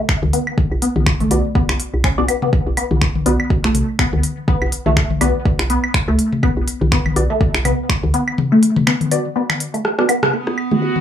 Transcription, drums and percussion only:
0.09 finger snap, kick
0.23 high tom
0.33 open hi-hat
0.47 claves
0.58 kick, high tom
0.82 open hi-hat
0.96 high tom
1.06 finger snap, kick, claves
1.20 open hi-hat, high tom
1.31 open hi-hat
1.55 kick
1.69 finger snap, claves
1.80 open hi-hat
2.04 finger snap, kick
2.28 open hi-hat, claves
2.42 mid tom
2.53 kick
2.77 open hi-hat, claves
2.91 high tom
3.02 finger snap, kick
3.15 high tom
3.26 open hi-hat
3.40 claves
3.50 kick
3.64 finger snap
3.75 open hi-hat, mid tom
3.99 finger snap, kick, claves
4.13 high tom
4.23 open hi-hat
4.48 kick, high tom
4.62 claves
4.72 open hi-hat
4.86 high tom
4.97 finger snap, kick
5.10 high tom
5.21 open hi-hat, claves
5.45 kick
5.59 finger snap
5.70 open hi-hat
5.84 claves
5.94 finger snap, kick
6.19 open hi-hat
6.33 mid tom
6.43 kick, claves
6.68 open hi-hat
6.81 high tom
6.92 finger snap, kick
7.06 high tom, claves
7.16 open hi-hat
7.41 kick
7.55 finger snap
7.65 open hi-hat, mid tom, claves
7.89 finger snap, kick
8.03 high tom
8.14 open hi-hat
8.28 claves
8.38 mid tom, high tom
8.63 open hi-hat
8.76 mid tom, high tom
8.87 finger snap, claves
9.01 open hi-hat, high tom
9.12 open hi-hat
9.50 finger snap, high tom, claves
9.60 open hi-hat
9.74 open hi-hat
9.85 cross-stick
9.99 cross-stick
10.09 open hi-hat, claves
10.23 cross-stick, mid tom
10.47 cross-stick
10.58 claves
10.71 high tom
10.96 high tom

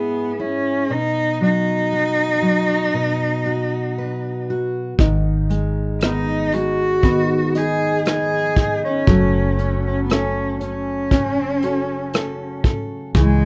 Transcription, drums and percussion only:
4.99 kick, closed hi-hat
5.50 closed hi-hat
6.01 cross-stick, closed hi-hat
6.52 closed hi-hat
7.03 kick, closed hi-hat
7.55 closed hi-hat
8.05 cross-stick, closed hi-hat
8.56 kick, closed hi-hat
9.07 kick, closed hi-hat
9.59 closed hi-hat
10.10 cross-stick, closed hi-hat
10.61 closed hi-hat
11.11 kick, closed hi-hat
11.62 closed hi-hat
12.13 cross-stick, closed hi-hat
12.64 kick, closed hi-hat
13.14 kick, closed hi-hat

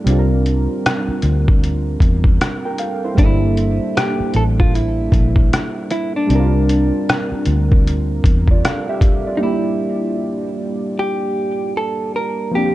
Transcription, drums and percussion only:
0.07 closed hi-hat
0.46 closed hi-hat
0.86 cross-stick, closed hi-hat
1.22 closed hi-hat
1.48 kick
1.64 closed hi-hat
2.00 kick, closed hi-hat
2.24 kick
2.41 cross-stick, closed hi-hat
2.78 closed hi-hat
3.18 kick, closed hi-hat
3.57 closed hi-hat
3.97 cross-stick, closed hi-hat
4.34 closed hi-hat
4.60 kick
4.75 closed hi-hat
5.12 kick, closed hi-hat
5.36 kick
5.53 cross-stick, closed hi-hat
5.91 closed hi-hat
6.30 closed hi-hat
6.69 closed hi-hat
7.09 cross-stick, closed hi-hat
7.46 closed hi-hat
7.72 kick
7.87 closed hi-hat
8.24 kick, closed hi-hat
8.48 kick
8.65 cross-stick, closed hi-hat
9.01 kick, closed hi-hat

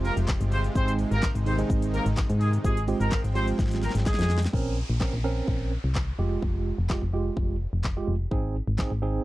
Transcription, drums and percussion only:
0.05 open hi-hat, shaker
0.17 closed hi-hat, shaker
0.28 kick, snare, clap, shaker
0.41 closed hi-hat, shaker
0.52 open hi-hat, shaker
0.64 closed hi-hat, shaker
0.75 kick, shaker
0.88 closed hi-hat, shaker
0.99 open hi-hat, shaker
1.12 closed hi-hat, shaker
1.23 kick, snare, clap, shaker
1.35 closed hi-hat, shaker
1.46 open hi-hat, shaker
1.59 closed hi-hat, shaker
1.70 kick, shaker
1.82 closed hi-hat, shaker
1.94 open hi-hat, shaker
2.06 closed hi-hat, shaker
2.17 kick, snare, clap, shaker
2.30 closed hi-hat, shaker
2.41 open hi-hat, shaker
2.53 closed hi-hat, shaker
2.64 kick, shaker
2.77 closed hi-hat, shaker
2.88 open hi-hat, shaker
3.01 closed hi-hat, shaker
3.12 kick, snare, clap, shaker
3.25 closed hi-hat, shaker
3.35 open hi-hat, shaker
3.48 closed hi-hat, shaker
3.59 kick, snare, shaker
3.67 snare
3.71 snare, closed hi-hat, shaker
3.83 snare, open hi-hat, shaker
3.90 snare
3.95 snare, closed hi-hat, shaker
4.06 kick, snare, clap, shaker
4.14 snare
4.19 snare, closed hi-hat, shaker
4.30 snare, open hi-hat, shaker
4.38 snare
4.42 snare, closed hi-hat, shaker
4.53 kick
5.01 kick, snare, clap
5.48 kick
5.95 kick, snare, clap
6.42 kick
6.90 kick, snare, clap
7.37 kick
7.84 kick, snare, clap
8.31 kick
8.79 kick, snare, clap

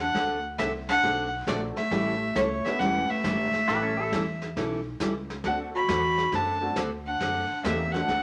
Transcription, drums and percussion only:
0.15 brush sweep, kick, snare
0.59 kick, snare, hi-hat pedal
0.89 snare
1.03 brush sweep, kick, snare
1.47 kick, snare, hi-hat pedal
1.77 snare
1.91 brush sweep, kick, snare
2.36 kick, snare, hi-hat pedal
2.65 snare
2.80 brush sweep, kick, snare
3.24 kick, snare, hi-hat pedal
3.53 snare
3.68 brush sweep, kick, snare
4.12 kick, snare, hi-hat pedal
4.42 snare
4.56 brush sweep, kick, snare
5.00 kick, snare, hi-hat pedal
5.30 snare
5.44 brush sweep, kick, snare
5.88 kick, snare, hi-hat pedal
6.18 snare
6.32 brush sweep, kick, snare
6.76 kick, snare, hi-hat pedal
7.20 brush sweep, kick, snare
7.64 kick, snare, hi-hat pedal
7.94 snare
8.08 brush sweep, kick, snare

